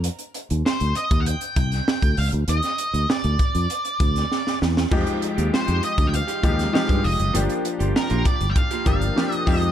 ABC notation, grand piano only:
X:1
M:4/4
L:1/16
Q:1/4=99
K:Fdor
V:1 name="Grand piano"
z16 | z16 | [F,A,EG]4- [F,A,EG] z4 z [F,A,EG]2 [F,A,EG]2 z2 | [F,B,DG]4- [F,B,DG] z4 z [F,B,DG]2 [F,B,DG]2 [F,G,A,EG]2 |]